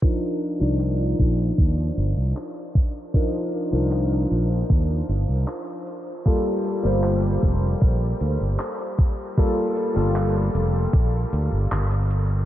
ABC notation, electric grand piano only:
X:1
M:4/4
L:1/16
Q:1/4=77
K:Cdor
V:1 name="Electric grand piano"
[F,DEB]3 [F,DEd]12- [F,DEd] | [F,DEB]3 [F,DEB]12- [F,DEB] | [G,B,FA]3 [G,B,Fc]12- [G,B,Fc] | [G,B,FA]3 [G,B,FA]12- [G,B,FA] |]